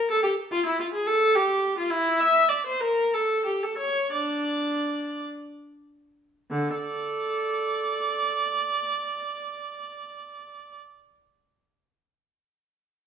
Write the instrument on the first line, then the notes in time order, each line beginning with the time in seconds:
viola
0.11 A4
0.23 G4
0.52 F4
0.66 E4
0.79 F4
0.94 G#4
1.07 A4
1.35 G4
1.78 F4
1.90 E4
2.20 E5
2.48 D5
2.66 C5
2.80 A#4
3.13 A4
3.46 G4
3.63 A4
3.78 C#5
4.12 D4 D5
6.51 D3
6.75 A4 D5